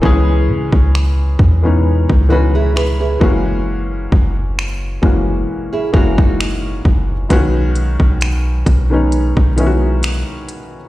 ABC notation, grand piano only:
X:1
M:4/4
L:1/16
Q:"Swing 16ths" 1/4=66
K:B
V:1 name="Grand piano"
[E,G,B,CG]6 z [E,G,B,CD]3 [E,G,B,CB]4 [E,G,A,CF]2- | [E,G,A,CF]4- [E,G,A,CF] z [E,G,A,CF]3 z [E,G,A,CF]4- [E,G,A,CF] z | [C,D,G,B,CF]6 z [D,G,B,CD]3 [D,G,B,CEF]4- [D,G,B,CEF] z |]